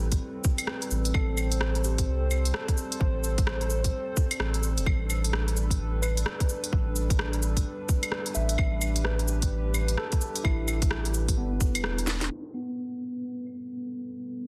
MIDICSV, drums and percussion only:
0, 0, Header, 1, 2, 480
1, 0, Start_track
1, 0, Key_signature, 0, "minor"
1, 0, Tempo, 465116
1, 1181, Time_signature, 4, 2, 24, 8
1, 14933, End_track
2, 0, Start_track
2, 0, Title_t, "Drums"
2, 120, Note_on_c, 9, 42, 58
2, 124, Note_on_c, 9, 36, 63
2, 223, Note_off_c, 9, 42, 0
2, 228, Note_off_c, 9, 36, 0
2, 455, Note_on_c, 9, 69, 71
2, 460, Note_on_c, 9, 36, 114
2, 559, Note_off_c, 9, 69, 0
2, 563, Note_off_c, 9, 36, 0
2, 602, Note_on_c, 9, 42, 59
2, 602, Note_on_c, 9, 75, 64
2, 694, Note_on_c, 9, 37, 101
2, 705, Note_off_c, 9, 42, 0
2, 705, Note_off_c, 9, 75, 0
2, 798, Note_off_c, 9, 37, 0
2, 846, Note_on_c, 9, 42, 45
2, 937, Note_on_c, 9, 69, 74
2, 949, Note_off_c, 9, 42, 0
2, 1041, Note_off_c, 9, 69, 0
2, 1085, Note_on_c, 9, 42, 61
2, 1178, Note_on_c, 9, 75, 57
2, 1182, Note_on_c, 9, 36, 120
2, 1188, Note_off_c, 9, 42, 0
2, 1282, Note_off_c, 9, 75, 0
2, 1285, Note_off_c, 9, 36, 0
2, 1418, Note_on_c, 9, 69, 69
2, 1418, Note_on_c, 9, 75, 37
2, 1522, Note_off_c, 9, 69, 0
2, 1522, Note_off_c, 9, 75, 0
2, 1564, Note_on_c, 9, 42, 58
2, 1659, Note_on_c, 9, 37, 107
2, 1667, Note_off_c, 9, 42, 0
2, 1762, Note_off_c, 9, 37, 0
2, 1808, Note_on_c, 9, 42, 30
2, 1901, Note_on_c, 9, 69, 72
2, 1911, Note_off_c, 9, 42, 0
2, 2004, Note_off_c, 9, 69, 0
2, 2047, Note_on_c, 9, 42, 58
2, 2049, Note_on_c, 9, 36, 66
2, 2151, Note_off_c, 9, 42, 0
2, 2152, Note_off_c, 9, 36, 0
2, 2383, Note_on_c, 9, 69, 69
2, 2383, Note_on_c, 9, 75, 36
2, 2486, Note_off_c, 9, 69, 0
2, 2486, Note_off_c, 9, 75, 0
2, 2532, Note_on_c, 9, 42, 58
2, 2621, Note_on_c, 9, 37, 103
2, 2636, Note_off_c, 9, 42, 0
2, 2724, Note_off_c, 9, 37, 0
2, 2769, Note_on_c, 9, 36, 108
2, 2771, Note_on_c, 9, 42, 41
2, 2863, Note_on_c, 9, 69, 69
2, 2872, Note_off_c, 9, 36, 0
2, 2874, Note_off_c, 9, 42, 0
2, 2966, Note_off_c, 9, 69, 0
2, 3013, Note_on_c, 9, 42, 59
2, 3102, Note_on_c, 9, 36, 119
2, 3116, Note_off_c, 9, 42, 0
2, 3206, Note_off_c, 9, 36, 0
2, 3342, Note_on_c, 9, 69, 73
2, 3446, Note_off_c, 9, 69, 0
2, 3488, Note_on_c, 9, 42, 54
2, 3489, Note_on_c, 9, 36, 108
2, 3580, Note_on_c, 9, 37, 108
2, 3591, Note_off_c, 9, 42, 0
2, 3592, Note_off_c, 9, 36, 0
2, 3683, Note_off_c, 9, 37, 0
2, 3726, Note_on_c, 9, 42, 30
2, 3819, Note_on_c, 9, 69, 75
2, 3829, Note_off_c, 9, 42, 0
2, 3922, Note_off_c, 9, 69, 0
2, 3966, Note_on_c, 9, 42, 55
2, 3969, Note_on_c, 9, 36, 64
2, 4069, Note_off_c, 9, 42, 0
2, 4072, Note_off_c, 9, 36, 0
2, 4301, Note_on_c, 9, 69, 73
2, 4302, Note_on_c, 9, 36, 114
2, 4404, Note_off_c, 9, 69, 0
2, 4406, Note_off_c, 9, 36, 0
2, 4447, Note_on_c, 9, 42, 57
2, 4447, Note_on_c, 9, 75, 60
2, 4540, Note_on_c, 9, 37, 99
2, 4551, Note_off_c, 9, 42, 0
2, 4551, Note_off_c, 9, 75, 0
2, 4643, Note_off_c, 9, 37, 0
2, 4686, Note_on_c, 9, 42, 42
2, 4779, Note_on_c, 9, 69, 74
2, 4790, Note_off_c, 9, 42, 0
2, 4882, Note_off_c, 9, 69, 0
2, 4929, Note_on_c, 9, 42, 54
2, 4929, Note_on_c, 9, 69, 42
2, 5020, Note_on_c, 9, 36, 115
2, 5022, Note_on_c, 9, 75, 55
2, 5032, Note_off_c, 9, 42, 0
2, 5032, Note_off_c, 9, 69, 0
2, 5123, Note_off_c, 9, 36, 0
2, 5125, Note_off_c, 9, 75, 0
2, 5262, Note_on_c, 9, 69, 79
2, 5262, Note_on_c, 9, 75, 36
2, 5365, Note_off_c, 9, 69, 0
2, 5365, Note_off_c, 9, 75, 0
2, 5412, Note_on_c, 9, 42, 51
2, 5504, Note_on_c, 9, 37, 104
2, 5515, Note_off_c, 9, 42, 0
2, 5607, Note_off_c, 9, 37, 0
2, 5655, Note_on_c, 9, 42, 30
2, 5745, Note_on_c, 9, 69, 74
2, 5758, Note_off_c, 9, 42, 0
2, 5848, Note_off_c, 9, 69, 0
2, 5888, Note_on_c, 9, 36, 61
2, 5894, Note_on_c, 9, 42, 55
2, 5992, Note_off_c, 9, 36, 0
2, 5997, Note_off_c, 9, 42, 0
2, 6222, Note_on_c, 9, 69, 70
2, 6222, Note_on_c, 9, 75, 35
2, 6325, Note_off_c, 9, 69, 0
2, 6325, Note_off_c, 9, 75, 0
2, 6371, Note_on_c, 9, 42, 57
2, 6459, Note_on_c, 9, 37, 100
2, 6474, Note_off_c, 9, 42, 0
2, 6562, Note_off_c, 9, 37, 0
2, 6608, Note_on_c, 9, 42, 39
2, 6609, Note_on_c, 9, 36, 102
2, 6700, Note_on_c, 9, 69, 75
2, 6711, Note_off_c, 9, 42, 0
2, 6712, Note_off_c, 9, 36, 0
2, 6803, Note_off_c, 9, 69, 0
2, 6849, Note_on_c, 9, 42, 56
2, 6942, Note_on_c, 9, 36, 111
2, 6953, Note_off_c, 9, 42, 0
2, 7045, Note_off_c, 9, 36, 0
2, 7181, Note_on_c, 9, 69, 78
2, 7284, Note_off_c, 9, 69, 0
2, 7330, Note_on_c, 9, 36, 106
2, 7331, Note_on_c, 9, 42, 53
2, 7421, Note_on_c, 9, 37, 99
2, 7433, Note_off_c, 9, 36, 0
2, 7434, Note_off_c, 9, 42, 0
2, 7524, Note_off_c, 9, 37, 0
2, 7567, Note_on_c, 9, 42, 31
2, 7663, Note_on_c, 9, 69, 79
2, 7670, Note_off_c, 9, 42, 0
2, 7766, Note_off_c, 9, 69, 0
2, 7809, Note_on_c, 9, 36, 59
2, 7809, Note_on_c, 9, 42, 56
2, 7912, Note_off_c, 9, 36, 0
2, 7912, Note_off_c, 9, 42, 0
2, 8141, Note_on_c, 9, 69, 75
2, 8142, Note_on_c, 9, 36, 101
2, 8244, Note_off_c, 9, 69, 0
2, 8245, Note_off_c, 9, 36, 0
2, 8286, Note_on_c, 9, 42, 53
2, 8286, Note_on_c, 9, 75, 63
2, 8377, Note_on_c, 9, 37, 94
2, 8389, Note_off_c, 9, 42, 0
2, 8389, Note_off_c, 9, 75, 0
2, 8480, Note_off_c, 9, 37, 0
2, 8523, Note_on_c, 9, 42, 41
2, 8615, Note_on_c, 9, 69, 77
2, 8626, Note_off_c, 9, 42, 0
2, 8719, Note_off_c, 9, 69, 0
2, 8762, Note_on_c, 9, 42, 56
2, 8855, Note_on_c, 9, 75, 63
2, 8861, Note_on_c, 9, 36, 116
2, 8865, Note_off_c, 9, 42, 0
2, 8958, Note_off_c, 9, 75, 0
2, 8964, Note_off_c, 9, 36, 0
2, 9097, Note_on_c, 9, 69, 80
2, 9097, Note_on_c, 9, 75, 39
2, 9200, Note_off_c, 9, 69, 0
2, 9200, Note_off_c, 9, 75, 0
2, 9244, Note_on_c, 9, 42, 57
2, 9336, Note_on_c, 9, 37, 94
2, 9347, Note_off_c, 9, 42, 0
2, 9439, Note_off_c, 9, 37, 0
2, 9487, Note_on_c, 9, 42, 29
2, 9576, Note_on_c, 9, 69, 76
2, 9590, Note_off_c, 9, 42, 0
2, 9679, Note_off_c, 9, 69, 0
2, 9723, Note_on_c, 9, 42, 55
2, 9729, Note_on_c, 9, 36, 58
2, 9827, Note_off_c, 9, 42, 0
2, 9832, Note_off_c, 9, 36, 0
2, 10056, Note_on_c, 9, 69, 79
2, 10056, Note_on_c, 9, 75, 38
2, 10159, Note_off_c, 9, 69, 0
2, 10159, Note_off_c, 9, 75, 0
2, 10200, Note_on_c, 9, 42, 57
2, 10294, Note_on_c, 9, 37, 93
2, 10303, Note_off_c, 9, 42, 0
2, 10398, Note_off_c, 9, 37, 0
2, 10441, Note_on_c, 9, 42, 40
2, 10449, Note_on_c, 9, 36, 101
2, 10539, Note_on_c, 9, 69, 77
2, 10544, Note_off_c, 9, 42, 0
2, 10552, Note_off_c, 9, 36, 0
2, 10642, Note_off_c, 9, 69, 0
2, 10686, Note_on_c, 9, 42, 60
2, 10781, Note_on_c, 9, 36, 114
2, 10781, Note_on_c, 9, 75, 66
2, 10790, Note_off_c, 9, 42, 0
2, 10884, Note_off_c, 9, 36, 0
2, 10884, Note_off_c, 9, 75, 0
2, 11021, Note_on_c, 9, 69, 78
2, 11021, Note_on_c, 9, 75, 40
2, 11124, Note_off_c, 9, 69, 0
2, 11124, Note_off_c, 9, 75, 0
2, 11165, Note_on_c, 9, 42, 56
2, 11167, Note_on_c, 9, 36, 106
2, 11256, Note_on_c, 9, 37, 98
2, 11268, Note_off_c, 9, 42, 0
2, 11270, Note_off_c, 9, 36, 0
2, 11359, Note_off_c, 9, 37, 0
2, 11405, Note_on_c, 9, 42, 32
2, 11498, Note_on_c, 9, 69, 76
2, 11509, Note_off_c, 9, 42, 0
2, 11601, Note_off_c, 9, 69, 0
2, 11646, Note_on_c, 9, 36, 62
2, 11646, Note_on_c, 9, 42, 58
2, 11749, Note_off_c, 9, 42, 0
2, 11750, Note_off_c, 9, 36, 0
2, 11977, Note_on_c, 9, 36, 103
2, 11977, Note_on_c, 9, 69, 81
2, 12081, Note_off_c, 9, 36, 0
2, 12081, Note_off_c, 9, 69, 0
2, 12127, Note_on_c, 9, 42, 55
2, 12127, Note_on_c, 9, 75, 67
2, 12217, Note_on_c, 9, 37, 94
2, 12230, Note_off_c, 9, 42, 0
2, 12230, Note_off_c, 9, 75, 0
2, 12320, Note_off_c, 9, 37, 0
2, 12368, Note_on_c, 9, 42, 42
2, 12458, Note_on_c, 9, 38, 86
2, 12458, Note_on_c, 9, 69, 79
2, 12471, Note_off_c, 9, 42, 0
2, 12562, Note_off_c, 9, 38, 0
2, 12562, Note_off_c, 9, 69, 0
2, 12604, Note_on_c, 9, 38, 106
2, 12604, Note_on_c, 9, 42, 60
2, 12698, Note_on_c, 9, 75, 52
2, 12707, Note_off_c, 9, 38, 0
2, 12707, Note_off_c, 9, 42, 0
2, 12801, Note_off_c, 9, 75, 0
2, 12935, Note_on_c, 9, 75, 34
2, 13039, Note_off_c, 9, 75, 0
2, 13894, Note_on_c, 9, 75, 32
2, 13997, Note_off_c, 9, 75, 0
2, 14933, End_track
0, 0, End_of_file